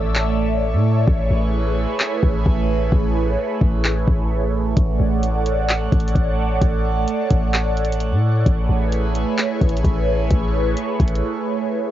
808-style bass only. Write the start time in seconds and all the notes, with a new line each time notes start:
Already playing: A1
0.73 A2
1.07 A1
1.30 A1
2.23 A1
2.46 A1
2.92 A1
3.61 A1
4.07 A1
4.77 A1
5.00 A1
5.92 A1
6.15 A1
6.61 A1
7.31 A1
8.11 A2
8.46 A1
8.69 A1
9.61 A1
9.84 A1
10.31 A1
11.00 A1